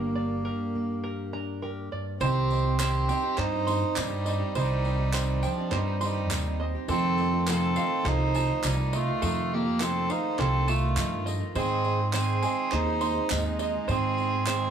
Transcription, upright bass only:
0.00 0.46 G1 medium
2.21 3.09 C2 loud
3.38 3.82 G2 loud
3.97 4.41 G2 medium
4.55 5.43 C2 medium
5.71 6.30 G2 loud
6.30 6.74 D#2 medium
6.88 7.77 F2 loud
8.05 8.49 C2 loud
8.64 9.08 C2 medium
9.22 10.10 F2 medium
10.39 10.98 C2 medium
10.97 11.41 G2 medium
11.55 12.43 G#2 loud
12.72 13.16 D#2 loud
13.31 13.74 D#2 medium
13.89 14.70 G#2 loud

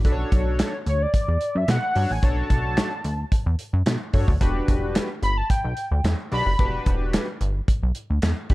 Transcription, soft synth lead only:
0.88 1.04 C#5 medium
1.02 1.59 D5 medium
1.57 1.69 E5 medium
1.70 2.13 F#5 loud
2.12 2.26 G#5 loud
2.25 3.33 A5 loud
5.23 5.39 B5 loud
5.37 5.52 A5 loud
5.50 6.05 G5 medium
6.33 6.83 B5 loud

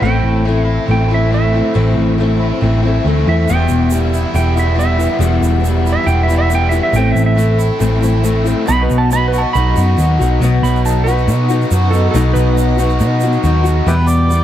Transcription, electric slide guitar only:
0.03 0.64 G5 medium
0.64 0.86 F5 medium
0.91 1.11 G5 medium
1.14 1.33 E5 medium
1.34 2.17 E5 medium
3.29 3.49 E5 medium
3.50 4.08 G5 medium
4.08 4.33 F5 medium
4.35 4.56 G5 medium
4.59 4.78 E5 medium
4.79 5.62 E5 medium
5.92 6.07 E5 loud
6.07 6.21 G5 loud
6.23 6.37 E5 medium
6.38 6.51 E5 loud
6.55 6.67 G5 medium
6.69 6.81 E5 medium
6.83 6.96 E5 loud
6.96 7.09 G5 loud
7.12 7.24 E5 medium
7.26 7.67 E5 loud
8.68 8.82 B5 loud
8.83 8.96 B4 medium
8.98 9.11 A5 medium
9.13 9.26 B5 loud
9.28 9.41 B4 medium
9.38 9.53 A5 medium
9.53 10.38 B5 loud
10.63 10.84 B5 medium
10.86 11.06 A5 medium
11.04 11.89 B4 medium
11.91 12.10 A4 medium
12.11 12.33 A4 medium
12.33 13.18 B4 loud

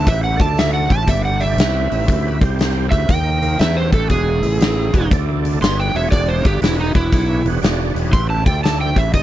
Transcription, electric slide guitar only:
0.08 0.23 E5 medium
0.24 0.40 F#5 medium
0.41 0.57 A5 loud
0.59 0.73 E5 medium
0.74 0.90 F#5 medium
0.92 1.08 A5 loud
1.09 1.25 E5 medium
1.25 1.41 F#5 medium
1.41 2.39 E5 medium
2.91 3.08 E5 medium
3.10 3.59 G5 loud
3.60 3.76 E5 medium
3.77 3.93 C5 medium
3.94 4.10 A4 loud
4.11 5.08 G#4 medium
5.62 5.78 C6 loud
5.80 5.95 G5 medium
5.96 6.11 E5 medium
6.11 6.28 D5 medium
6.28 6.45 C5 medium
6.46 6.62 G4 loud
6.64 6.79 E4 medium
6.80 6.95 D#4 medium
6.96 7.45 E4 loud
8.13 8.30 C6 loud
8.30 8.47 A5 medium
8.47 8.64 G5 medium
8.64 8.80 A5 medium
8.81 8.97 G5 medium
8.98 9.14 E5 medium
9.15 9.23 D#5 loud

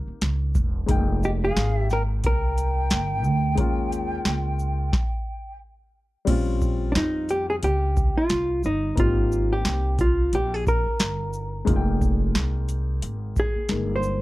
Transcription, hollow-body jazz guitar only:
1.25 1.30 G4 medium
1.45 1.81 G#4 loud
1.81 1.92 G4 loud
1.93 2.02 A#4 medium
2.26 5.58 A#4 loud
6.92 6.96 D4 medium
6.97 7.31 D#4 medium
7.31 7.49 G4 medium
7.50 7.55 G#4 medium
7.64 8.17 G4 medium
8.18 8.65 F4 medium
8.66 8.99 D#4 medium
9.00 9.53 F4 medium
9.53 10.01 G4 loud
10.01 10.35 F4 medium
10.35 10.54 G4 loud
10.54 10.68 G#4 medium
10.68 11.65 A#4 medium
13.40 13.96 G#4 loud
13.96 14.22 C5 medium

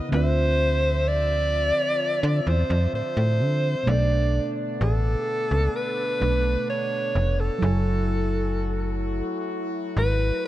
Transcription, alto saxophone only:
0.14 1.09 C5 loud
1.08 2.50 D5 loud
2.48 2.94 C5 medium
2.95 3.90 C5 medium
3.89 4.55 D5 loud
4.83 5.78 A4 medium
5.76 6.69 B4 loud
6.70 7.42 C#5 loud
7.40 9.27 A4 medium
9.98 10.41 B4 loud

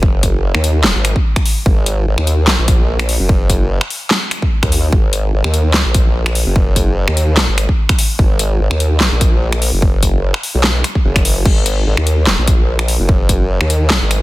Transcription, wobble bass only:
0.00 0.53 F#1 loud
0.55 0.94 D#2 loud
0.95 1.14 G#1 loud
1.66 2.05 G#1 loud
2.07 2.16 G#1 medium
2.18 2.57 D#2 loud
2.59 3.18 A#1 medium
3.20 3.79 F#1 loud
4.63 4.91 D#2 loud
4.92 5.32 G#1 medium
5.33 5.43 G#1 loud
5.44 5.83 D#2 loud
5.85 6.45 A#1 loud
6.46 7.06 F#1 loud
7.08 7.47 D#2 loud
7.48 7.67 G#1 loud
8.19 8.58 G#1 loud
8.60 8.69 G#1 loud
8.71 9.10 D#2 loud
9.12 9.71 A#1 loud
9.73 10.32 F#1 loud
10.55 10.83 B1 loud
11.05 11.44 F#1 loud
11.45 11.85 G#1 loud
11.86 11.96 G#1 loud
11.97 12.36 D#2 loud
12.38 12.98 A#1 loud
12.99 13.59 F#1 loud
13.61 14.00 D#2 loud
14.02 14.20 G#1 loud

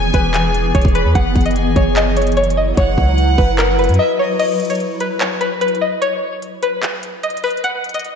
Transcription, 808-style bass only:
0.00 0.11 E1 loud
0.14 0.72 E1 loud
0.75 0.84 E1 loud
0.85 1.07 E1 loud
1.05 1.15 E2 loud
1.15 1.35 F#1 loud
1.36 1.74 F#1 loud
1.76 2.73 F#1 loud
2.77 2.97 F#1 loud
2.98 3.37 C#2 loud
3.38 3.90 F#1 loud
3.89 3.99 F#2 loud

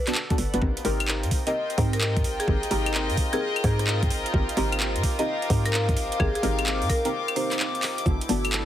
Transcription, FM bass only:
0.38 0.52 G1 medium
0.54 0.61 G1 medium
0.62 0.75 G#1 loud
0.85 1.25 G#1 loud
1.23 1.30 G#2 loud
1.78 2.26 G#2 loud
2.24 2.38 G#1 loud
2.48 2.61 G#1 loud
2.71 3.11 G#1 loud
3.10 3.17 G#2 loud
3.64 4.12 G#2 loud
4.10 4.24 G#1 loud
4.34 4.47 G#1 loud
4.57 4.97 G#1 loud
4.96 5.03 G#2 loud
5.50 5.98 G#2 loud
5.97 6.10 G#1 loud
6.20 6.33 G#1 loud
6.43 6.83 G#1 loud
6.82 6.89 G#2 loud
8.06 8.19 G1 loud
8.29 8.65 G1 loud

